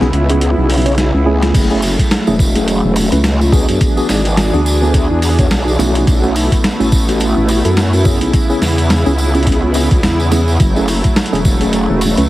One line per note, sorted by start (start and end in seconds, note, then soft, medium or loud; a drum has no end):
0.00 0.11 B1 loud
0.00 1.52 C#3 medium
0.00 1.50 B3 medium
0.00 0.07 B3 loud
0.00 0.07 C#4 medium
0.00 3.77 E4 medium
0.00 0.07 E4 medium
0.00 0.07 G#4 loud
0.00 snare soft
0.13 0.55 C#2 loud
0.13 closed hi-hat soft
0.29 0.82 B3 medium
0.29 0.82 C#4 medium
0.29 0.82 E4 medium
0.29 0.82 G#4 medium
0.29 closed hi-hat medium
0.41 closed hi-hat medium
0.58 1.11 B1 loud
0.70 open hi-hat medium
0.74 open hi-hat medium
0.78 open hi-hat soft
0.82 0.91 B3 medium
0.82 0.92 C#4 medium
0.82 0.92 E4 medium
0.82 0.92 C#5 medium
0.82 open hi-hat soft
0.86 closed hi-hat medium
0.86 open hi-hat soft
0.92 open hi-hat soft
0.95 snare medium
0.95 closed hi-hat medium
0.95 open hi-hat soft
1.14 1.53 C#2 medium
1.26 1.67 A3 loud
1.26 1.67 C#4 medium
1.26 1.67 E4 medium
1.26 1.67 G#4 loud
1.42 snare medium
1.42 closed hi-hat medium
1.54 1.96 F#1 loud
1.54 3.78 F#3 medium
1.54 3.79 A3 medium
1.54 kick loud
1.54 closed hi-hat medium
1.54 crash medium
1.54 tambourine medium
1.70 1.80 A3 medium
1.70 1.80 C#4 medium
1.70 1.80 E4 medium
1.70 1.80 G#4 loud
1.70 tambourine soft
1.82 open hi-hat medium
1.82 tambourine medium
1.99 kick medium
1.99 closed hi-hat medium
1.99 tambourine soft
2.11 snare loud
2.11 closed hi-hat medium
2.11 tambourine medium
2.27 2.81 E1 loud
2.27 2.33 A3 loud
2.27 2.33 C#4 medium
2.27 2.33 E4 medium
2.27 2.33 G#4 loud
2.27 tambourine soft
2.39 kick loud
2.39 tambourine medium
2.55 3.08 A3 medium
2.55 3.08 C#4 medium
2.55 3.08 E4 medium
2.55 3.08 G#4 medium
2.55 closed hi-hat medium
2.55 tambourine soft
2.68 closed hi-hat medium
2.68 tambourine medium
2.84 3.10 E1 medium
2.96 open hi-hat medium
2.96 tambourine medium
3.12 3.66 C#2 loud
3.12 3.18 A3 medium
3.12 3.18 C#4 medium
3.12 3.18 E4 medium
3.12 3.18 B4 medium
3.12 closed hi-hat medium
3.12 tambourine soft
3.24 snare loud
3.24 closed hi-hat medium
3.24 tambourine medium
3.41 tambourine soft
3.52 3.93 B3 loud
3.52 3.93 D4 medium
3.52 3.93 F#4 medium
3.52 3.93 G#4 loud
3.52 kick loud
3.52 tambourine loud
3.69 3.79 F#2 loud
3.69 closed hi-hat medium
3.69 tambourine soft
3.81 6.05 E3 medium
3.81 6.05 D4 medium
3.81 6.05 G#4 medium
3.81 kick loud
3.81 closed hi-hat medium
3.81 tambourine medium
3.97 4.06 B3 medium
3.97 4.06 D4 medium
3.97 4.06 F#4 medium
3.97 4.06 G#4 loud
3.97 tambourine soft
4.09 4.51 G#1 loud
4.09 snare medium
4.09 open hi-hat medium
4.09 tambourine medium
4.25 closed hi-hat medium
4.25 tambourine soft
4.37 snare loud
4.37 closed hi-hat medium
4.37 tambourine medium
4.54 5.08 D2 loud
4.54 4.59 B3 loud
4.54 4.59 D4 medium
4.54 4.59 F#4 medium
4.54 4.59 G#4 loud
4.54 tambourine soft
4.66 tambourine loud
4.82 5.35 B3 medium
4.82 5.35 D4 medium
4.82 5.35 F#4 medium
4.82 5.35 G#4 medium
4.82 tambourine soft
4.94 kick medium
4.94 closed hi-hat medium
4.94 tambourine medium
5.10 5.49 E2 loud
5.22 open hi-hat medium
5.22 tambourine loud
5.39 5.45 B3 medium
5.39 5.45 D4 medium
5.39 5.45 F#4 medium
5.39 5.45 C#5 medium
5.39 kick loud
5.39 closed hi-hat medium
5.39 tambourine soft
5.50 5.77 B1 loud
5.50 snare loud
5.50 closed hi-hat medium
5.50 tambourine medium
5.68 tambourine soft
5.79 6.05 B1 loud
5.79 6.20 A3 loud
5.79 6.20 C#4 medium
5.79 6.20 E4 medium
5.79 6.20 F#4 loud
5.79 snare soft
5.79 tambourine loud
5.95 closed hi-hat medium
5.95 tambourine soft
6.07 6.49 B1 loud
6.07 8.31 A3 medium
6.07 8.31 B3 medium
6.07 12.29 E4 medium
6.07 kick loud
6.07 closed hi-hat medium
6.07 tambourine medium
6.24 6.33 A3 medium
6.24 6.33 C#4 medium
6.24 6.33 E4 medium
6.24 6.33 F#4 loud
6.24 tambourine soft
6.36 open hi-hat medium
6.36 tambourine medium
6.52 kick medium
6.52 closed hi-hat medium
6.52 tambourine soft
6.64 snare loud
6.64 closed hi-hat medium
6.64 tambourine medium
6.80 7.34 A1 loud
6.80 6.86 A3 loud
6.80 6.86 C#4 medium
6.80 6.86 E4 loud
6.80 6.86 F#4 loud
6.80 tambourine soft
6.92 kick loud
6.92 tambourine loud
7.08 7.61 A3 medium
7.08 7.61 C#4 medium
7.08 7.61 E4 medium
7.08 7.61 F#4 medium
7.08 closed hi-hat medium
7.08 tambourine soft
7.20 closed hi-hat medium
7.20 tambourine medium
7.37 7.62 A1 loud
7.48 open hi-hat medium
7.48 tambourine loud
7.65 8.19 F#2 loud
7.65 7.71 A3 medium
7.65 7.71 C#4 medium
7.65 7.71 E4 medium
7.65 7.71 A4 medium
7.65 closed hi-hat medium
7.65 tambourine soft
7.77 snare loud
7.77 closed hi-hat medium
7.77 tambourine medium
7.93 tambourine soft
8.05 8.46 B3 loud
8.05 8.46 C#4 medium
8.05 8.46 E4 medium
8.05 8.46 G#4 loud
8.05 kick loud
8.05 tambourine medium
8.21 8.31 B1 medium
8.21 closed hi-hat medium
8.21 tambourine soft
8.34 10.58 C#3 medium
8.34 10.58 B3 medium
8.34 kick loud
8.34 closed hi-hat medium
8.34 tambourine medium
8.50 8.59 B3 medium
8.50 8.59 C#4 medium
8.50 8.59 E4 medium
8.50 8.59 G#4 loud
8.50 tambourine soft
8.62 9.04 E2 loud
8.62 snare medium
8.62 open hi-hat medium
8.62 tambourine loud
8.78 closed hi-hat soft
8.78 tambourine soft
8.90 snare loud
8.90 closed hi-hat medium
8.90 tambourine medium
9.06 9.89 C#2 medium
9.06 9.12 B3 medium
9.06 9.12 C#4 medium
9.06 9.12 E4 medium
9.06 9.12 G#4 loud
9.06 tambourine soft
9.18 tambourine medium
9.35 9.73 B3 medium
9.35 9.73 C#4 medium
9.35 9.73 E4 medium
9.35 9.73 G#4 medium
9.35 closed hi-hat soft
9.35 tambourine soft
9.43 kick medium
9.43 closed hi-hat soft
9.47 closed hi-hat medium
9.47 tambourine medium
9.52 closed hi-hat soft
9.74 9.88 B3 medium
9.74 9.88 C#4 medium
9.74 9.88 E4 medium
9.74 9.88 G#4 medium
9.74 open hi-hat medium
9.74 tambourine loud
9.91 10.01 C#2 loud
9.91 kick loud
9.91 closed hi-hat medium
9.91 tambourine soft
10.03 10.58 E2 loud
10.03 snare loud
10.03 closed hi-hat medium
10.03 tambourine medium
10.20 tambourine soft
10.32 10.40 B3 loud
10.32 10.40 C#4 medium
10.32 10.40 E4 medium
10.32 10.40 G#4 loud
10.32 snare soft
10.32 closed hi-hat soft
10.32 tambourine loud
10.48 tambourine soft
10.60 11.02 F#1 loud
10.60 12.29 F#3 medium
10.60 12.29 A3 medium
10.60 kick loud
10.60 closed hi-hat medium
10.60 tambourine medium
10.76 10.86 A3 medium
10.76 10.86 C#4 medium
10.76 10.86 E4 medium
10.76 10.86 G#4 loud
10.76 tambourine soft
10.88 open hi-hat medium
10.88 tambourine medium
11.04 kick medium
11.04 closed hi-hat soft
11.04 tambourine soft
11.16 snare loud
11.16 closed hi-hat medium
11.16 tambourine medium
11.26 closed hi-hat soft
11.33 11.87 E1 loud
11.33 11.39 A3 loud
11.33 11.39 C#4 medium
11.33 11.39 E4 medium
11.33 11.39 G#4 loud
11.33 closed hi-hat soft
11.33 tambourine soft
11.45 kick loud
11.45 tambourine loud
11.61 12.14 A3 medium
11.61 12.14 C#4 medium
11.61 12.14 E4 medium
11.61 12.14 G#4 medium
11.61 closed hi-hat medium
11.61 tambourine soft
11.73 closed hi-hat medium
11.73 tambourine medium
11.89 12.15 E1 medium
12.01 open hi-hat medium
12.01 tambourine loud
12.17 12.29 C#2 loud
12.17 12.24 A3 medium
12.17 12.24 C#4 medium
12.17 12.24 E4 medium
12.17 12.24 B4 medium
12.17 closed hi-hat medium
12.17 tambourine soft